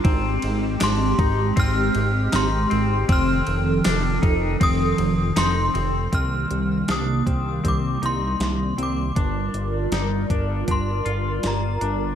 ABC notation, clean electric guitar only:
X:1
M:4/4
L:1/8
Q:1/4=79
K:Cdor
V:1 name="Clean electric guitar"
C2 D E C2 E C | C2 D E C2 E C | C2 D C C E2 C | D2 E D D F2 D |]